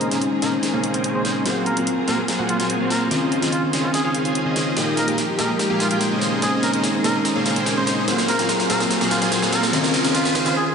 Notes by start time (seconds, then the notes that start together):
Already playing: D#3 A#3 C4 C#4 G#4
0.01 A#4, closed hi-hat
0.10 G#3 A#3 C#4 D#4 G#4 A#4 C5 D#5, snare, closed hi-hat
0.22 closed hi-hat
0.31 G#3 C#4 D#4 C5
0.42 A#3 C#4 G#4 A#4 C5 D#5, snare, closed hi-hat
0.52 G#3 C#4 D#4 C5
0.63 snare, closed hi-hat
0.73 A#3 C#4 G#4 C5 F5
0.83 G#3 C#4 D#4 C5, closed hi-hat
0.94 A#3 C#4 G#4 C5 G5, closed hi-hat
1.04 closed hi-hat
1.14 G#3 A#3 C#4 D#4 G#4 C5 D#5
1.25 C5, snare, closed hi-hat
1.45 F#3 A#3 C4 F4 F#4 G#4 A#4 C5 F5, snare, closed hi-hat
1.66 A#4, closed hi-hat
1.76 F#3 A#3 C4 F4 F#4 G#4 A#4 C5 F5, closed hi-hat
1.87 closed hi-hat
1.97 F#3 C4 F4 A#4
2.08 A#3 F#4 G#4 A#4 C5 F5, snare, closed hi-hat
2.17 F#3 C4 F4 A#4
2.28 snare, closed hi-hat
2.39 A#3 F#4 G#4 C5 F#5
2.48 F#3 C4 F4 A#4, closed hi-hat
2.60 A#3 F4 F#4 G#4 C5 G#5, snare, closed hi-hat
2.70 closed hi-hat
2.79 F#3 A#3 C4 F4 F#4 G#4 A#4 C5 F5
2.90 A#4, snare, closed hi-hat
3.10 D#3 C4 C#4 F4 G#4 C5 D#5, snare, closed hi-hat
3.32 closed hi-hat
3.41 D#3 C4 C#4 F4 G#4 C5 D#5, snare, closed hi-hat
3.52 F4, closed hi-hat
3.62 D#3 C4 C#4 F4
3.73 C#4 F4 G#4 C5 D#5, snare, closed hi-hat
3.83 D#3 C4 C#4 F4
3.94 G#4, snare, closed hi-hat
4.04 C#4 F4 G#4 C5 F5
4.14 D#3 C4 C#4 F4, closed hi-hat
4.25 C#4 F4 G#4 C5 G#5, closed hi-hat
4.35 closed hi-hat
4.45 D#3 C4 C#4 F4 G#4 C5 D#5
4.56 snare, closed hi-hat
4.76 F3 G#3 A#3 D#4 F4 G4 G#4 A#4 D#5, snare, closed hi-hat, riser
4.97 A#4, snare, closed hi-hat
5.07 G#3 A#3 D#4 F4 G4 G#4 A#4 D#5, closed hi-hat
5.18 snare, closed hi-hat
5.28 G#3 D#4 G4 A#4
5.39 A#3 F4 G4 G#4 A#4 D#5, snare, closed hi-hat
5.48 G#3 D#4 A#4
5.59 snare, closed hi-hat
5.70 A#3 F4 G4 G#4 F5
5.79 G#3 D#4 F4 G4 A#4, snare, closed hi-hat
5.91 A#3 F4 G4 G#4 G5, closed hi-hat
6.01 snare, closed hi-hat
6.10 G#3 A#3 C#4 D#4 G#4 C5 D#5
6.21 D#3 A#3 C4 C#4 G#4, snare, closed hi-hat
6.41 G#3 A#3 C#4 D#4 G#4 C5 D#5, snare, closed hi-hat
6.63 A#4, snare, closed hi-hat
6.72 G#3 A#3 C#4 D#4 G#4 A#4 C5 D#5, closed hi-hat
6.84 snare, closed hi-hat
6.93 G#3 C#4 D#4 C5
7.04 A#3 C#4 G#4 A#4 C5 D#5, snare, closed hi-hat
7.14 G#3 C#4 D#4 C5
7.25 snare, closed hi-hat
7.35 A#3 C#4 G#4 C5 F5
7.45 G#3 C#4 D#4 C5, snare, closed hi-hat
7.56 A#3 C#4 G#4 C5 G5, closed hi-hat
7.66 snare, closed hi-hat
7.76 G#3 A#3 C#4 D#4 G#4 C5 D#5
7.87 C5, snare, closed hi-hat
8.07 F#3 A#3 C4 F4 F#4 G#4 A#4 C5 F5, snare, closed hi-hat
8.18 snare
8.28 A#4, snare, closed hi-hat
8.38 F#3 A#3 C4 F4 F#4 G#4 A#4 C5 F5, snare, closed hi-hat
8.49 snare, closed hi-hat
8.59 F#3 C4 F4 A#4, snare
8.70 A#3 F#4 G#4 A#4 C5 F5, snare, closed hi-hat
8.79 F#3 C4 F4 A#4, snare
8.91 snare, closed hi-hat
9.01 A#3 F#4 G#4 C5 F#5, snare
9.10 F#3 C4 F4 A#4, snare, closed hi-hat
9.22 A#3 F4 F#4 G#4 C5 G#5, snare, closed hi-hat
9.32 snare, closed hi-hat
9.41 F#3 A#3 C4 F4 F#4 G#4 A#4 C5 F5, snare
9.53 A#4, snare, closed hi-hat
9.63 snare
9.72 D#3 C4 C#4 F4 G#4 C5 D#5, snare, closed hi-hat
9.84 snare
9.94 snare, closed hi-hat
10.04 D#3 C4 C#4 F4 G#4 C5 D#5, snare, closed hi-hat
10.15 F4, snare, closed hi-hat
10.24 D#3 C4 C#4 F4, snare
10.35 C#4 F4 G#4 C5 D#5, snare, closed hi-hat
10.45 D#3 C4 C#4 F4, snare
10.56 G#4
10.67 G#4